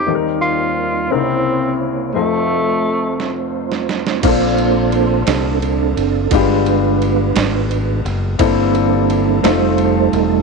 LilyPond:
<<
  \new Staff \with { instrumentName = "Tonewheel organ" } { \time 6/8 \key bes \major \tempo 4. = 58 << { <ees, bes'>4. c''4.~ | c''2. | c''4. g'8 a'4 | b'2~ b'8 r8 |
a'4. c''4 r8 | } \\ { <g c' ees'>4. <bes e' des''>4. | <a c' f'>2. | <f' a'>4. r8 <c' d'>4 | <d' f'>2~ <d' f'>8 r8 |
c'4. a'4. | } >> }
  \new Staff \with { instrumentName = "Tonewheel organ" } { \time 6/8 \key bes \major r2. | r2. | <bes c' d'>4. <c' d' a'>8 r4 | <aes b>4. <aes b f'>8 r4 |
<g bes d' e'>4. <g a ees'>4. | }
  \new Staff \with { instrumentName = "Grand piano" } { \time 6/8 \key bes \major <c' ees' g' a' bes'>4. <des c' ees' e' bes'>4. | <a c' f' a'>2. | <bes c' d' f' a'>2. | <aes b d' f' g'>2. |
<bes c' d' e' a'>4. <a c' ees' f' a'>4. | }
  \new Staff \with { instrumentName = "Grand piano" } { \clef bass \time 6/8 \key bes \major <ees, ees>4. <c, c>4. | <f,, f,>2. | bes,4. r4. | g,4. r4. |
g,4. r4. | }
  \new Staff \with { instrumentName = "Tenor saxophone" } { \time 6/8 \key bes \major r8 f'4 c'4 r8 | a2 r4 | r2. | r2. |
r2. | }
  \new Staff \with { instrumentName = "French horn section" } { \time 6/8 \key bes \major <ees, g bes c' ees'>4. <c' e'>4. | <f a f'>2. | r2. | r2. |
r2. | }
  \new Staff \with { instrumentName = "Fingered electric bass" } { \clef bass \time 6/8 \key bes \major r2. | r2. | bes,,4. c,4 ges,,8 | g,,4. aes,,4 ges,,8 |
g,,4. f,,4 e,,8 | }
  \new DrumStaff \with { instrumentName = "Drums" } \drummode { \time 6/8 r4. r4. | r4. sn8. sn16 sn16 sn16 | <cymc bd cymr>8 cymr8 cymr8 <cymr sn>8 cymr8 cymr8 | <bd cymr>8 cymr8 cymr8 <cymr sn>8 cymr8 cymr8 |
<bd cymr>8 cymr8 cymr8 <cymr sn>8 cymr8 cymr8 | }
>>